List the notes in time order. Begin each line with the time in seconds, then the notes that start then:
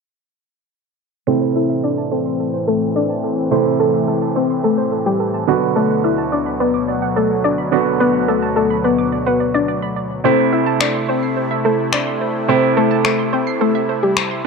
1.27 A2 C3 E3 A3 C4 E4 A4 C5
1.42 C5
1.55 E4 A4 E5
1.70 E5
1.84 D4 A4 D5
1.98 A5
2.12 C4 A4 C5
2.26 C6
2.40 A4
2.54 C5
2.68 A3 A4
2.96 D4 A4 D5
3.10 A5
3.24 A4
3.51 C3 A3 C4 E4 A4 C5
3.66 C5
3.80 A3 A4
3.94 E5
4.08 A3 A4
4.22 A5
4.36 C4 A4 C5
4.50 C6
4.64 A3 A4
4.78 C5
4.92 A4
5.06 G3 G4
5.20 A4
5.34 A5
5.47 D2 B2 D3 F#3 B3 F#4 D5
5.76 A3 A4 D5
5.90 F#5
6.04 E4 D5 E5
6.18 A5
6.32 D4 D5
6.46 B5
6.60 B3 B4 D5
6.74 D6
6.88 D5
7.02 F#5
7.16 A3 A4 D5
7.44 D4 D5
7.58 B5
7.72 D3 B3 F#4 D5
8.00 B3 B4 D5
8.14 F#5
8.28 A3 A4 D5
8.42 A5
8.56 A3 A4 D5
8.70 B5
8.84 B3 B4 D5
8.98 D6
9.12 D5
9.26 B3 B4 F#5
9.40 D5
9.54 D4 D5
9.68 D5
9.82 B5
9.96 D5
10.24 C3 A3 C4 E4 C5
10.39 E5
10.53 E4 C5 E5
10.66 A5
10.81 D4 C5 D5, finger snap
10.95 C6
11.09 C4 C5
11.23 C7
11.37 C5
11.51 E5
11.65 A3 A4 C5
11.93 D4 C5 D5, finger snap
12.07 C6
12.21 C5
12.48 C3 A3 C4 E4 C5
12.63 E5
12.77 A3 A4 C5
12.91 A5
13.05 A3 A4 C5, finger snap
13.19 C6
13.33 C4 C5
13.47 C7
13.61 A3 A4 C5
13.75 E5
13.89 C5
14.03 G3 G4
14.17 C5, finger snap
14.31 C6